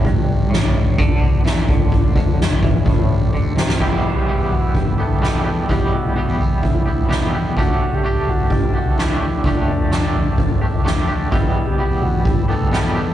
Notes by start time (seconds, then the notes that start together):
Already playing: G3 D4 G4 D5
0.04 G1 G2, kick, floor tom
0.29 floor tom
0.50 A1 A2, snare
0.65 floor tom
0.76 mid tom
0.98 D2 D3, kick, floor tom
1.21 floor tom
1.44 E2 E3, snare
1.68 D2 D3, kick, floor tom
1.92 kick, floor tom
2.16 D2 D3, kick, floor tom, mid tom
2.39 G1 G2, snare
2.51 floor tom
2.63 E2 E3, kick, mid tom
2.86 A1 A2, kick, floor tom
3.09 floor tom
3.33 D2 D3, kick
3.56 C2 C3, snare
3.69 snare
3.79 E2 B2 E3 G3 B3 E4 G4 B4 E5, kick, floor tom, crash
4.15 G4, floor tom
4.27 E3 G3 B3 G4
4.38 E2
4.51 F#4, floor tom
4.74 G4, kick, floor tom
4.98 D2 E3 G3 B3 G4 A4
5.10 floor tom
5.21 E2 B2 E3 G3 B3 G4, snare
5.32 E2
5.44 E3 G3 B3 G4
5.68 E2 B2 E3 G3 B3 G4 A4, kick, floor tom
5.94 F#4
6.04 floor tom
6.16 E3 G3 B3 G4
6.28 E2
6.40 floor tom
6.62 E4, kick, floor tom
6.86 D2 E3 G3 B3 G4
6.99 floor tom
7.08 E2 B2 E3 G3 B3 G4, snare
7.20 E2
7.33 E3 G3 B3 G4
7.56 D2 D3 A3 D4 F#4 G4 A4 D5 A5, kick, floor tom
7.92 G4, floor tom
8.03 D3 A3 D4 G4
8.15 D2
8.27 F#4, floor tom
8.50 G4, kick, floor tom
8.73 C2 A3 D4 F#4 G4
8.86 floor tom
8.96 D2 D3 A3 D4 E4, snare
9.00 G4
9.09 D2
9.21 A3 D4 G4
9.43 D2 D3 A3 D4 G4, kick, floor tom
9.68 mid tom
9.79 floor tom
9.90 D3 A3 D4 G4, snare, mid tom
10.02 D2
10.14 floor tom
10.38 kick, floor tom
10.61 C2 A3 D4 G4
10.74 floor tom, mid tom
10.84 D2 D3 A3 D4 G4, snare
10.97 D2
11.07 A3 D4 G4
11.30 E2 B2 E3 G3 B3 E4 G4 B4 E5, kick, floor tom
11.66 G4, floor tom
11.78 E3 G3 B3 G4
11.90 E2
12.02 F#4, floor tom
12.23 G4, kick, floor tom
12.48 D2 E3 G3 B3 G4 A4
12.60 floor tom
12.71 E2 B2 E3 G3 B3 G4, snare
12.84 E2
12.95 E3 G3 B3 G4